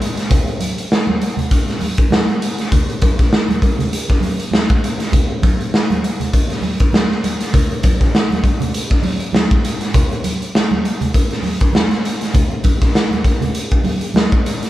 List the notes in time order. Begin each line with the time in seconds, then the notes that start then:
0.02 closed hi-hat
0.17 snare, closed hi-hat
0.30 kick, closed hi-hat, muted conga, low conga
0.47 closed hi-hat, muted conga
0.60 closed hi-hat, high conga
0.78 closed hi-hat
0.92 snare
1.07 muted conga, high conga
1.21 closed hi-hat
1.37 closed hi-hat, low conga
1.50 kick, closed hi-hat, muted conga
1.68 snare, closed hi-hat
1.79 open hi-hat, high conga
1.97 kick, closed hi-hat
2.10 snare, high conga
2.28 closed hi-hat
2.42 closed hi-hat
2.58 snare, closed hi-hat
2.72 kick, closed hi-hat, muted conga, low conga
2.90 closed hi-hat
3.02 kick, closed hi-hat, high conga
3.19 kick, snare, closed hi-hat
3.33 snare
3.48 closed hi-hat, high conga
3.62 kick, closed hi-hat
3.79 closed hi-hat, low conga
3.92 closed hi-hat, muted conga
4.08 kick, snare, closed hi-hat, muted conga
4.21 open hi-hat, high conga
4.39 closed hi-hat
4.51 snare, high conga
4.69 kick, closed hi-hat, muted conga
4.84 closed hi-hat
5.00 snare, closed hi-hat
5.12 kick, closed hi-hat, muted conga, low conga
5.42 kick, closed hi-hat, high conga
5.61 closed hi-hat
5.74 snare
5.90 closed hi-hat, muted conga, high conga
6.04 closed hi-hat
6.20 closed hi-hat, low conga
6.33 kick, closed hi-hat, muted conga
6.50 snare, closed hi-hat, muted conga
6.62 open hi-hat, high conga
6.80 kick, closed hi-hat
6.93 snare, high conga
7.10 snare, muted conga
7.24 closed hi-hat, high conga
7.40 snare, closed hi-hat
7.53 kick, closed hi-hat, low conga
7.71 closed hi-hat, muted conga
7.83 kick, closed hi-hat, high conga
8.01 kick, snare, closed hi-hat
8.15 snare
8.31 closed hi-hat, muted conga, high conga
8.44 kick, closed hi-hat
8.60 closed hi-hat, low conga
8.74 closed hi-hat
8.90 kick, snare, closed hi-hat, muted conga
9.03 open hi-hat, high conga
9.20 closed hi-hat
9.33 snare, muted conga, high conga
9.51 kick
9.65 closed hi-hat
9.81 snare, closed hi-hat
9.94 kick, closed hi-hat, low conga
10.12 closed hi-hat, muted conga
10.24 closed hi-hat, high conga
10.42 closed hi-hat
10.55 snare, muted conga
10.71 muted conga, high conga
10.85 closed hi-hat
11.01 closed hi-hat, low conga
11.14 kick, closed hi-hat
11.31 snare, closed hi-hat
11.43 open hi-hat, high conga
11.60 kick, closed hi-hat
11.73 snare, muted conga, high conga
11.91 snare, closed hi-hat, muted conga
12.05 closed hi-hat
12.21 snare, closed hi-hat
12.34 kick, closed hi-hat, muted conga, low conga
12.51 muted conga
12.64 kick, closed hi-hat, high conga
12.82 kick, snare, closed hi-hat
12.95 snare
13.11 closed hi-hat, high conga
13.24 kick, closed hi-hat
13.41 closed hi-hat, low conga
13.55 closed hi-hat
13.71 kick, closed hi-hat
13.84 open hi-hat, high conga
14.01 closed hi-hat
14.14 snare, muted conga, high conga
14.32 kick, muted conga
14.46 closed hi-hat
14.63 snare, closed hi-hat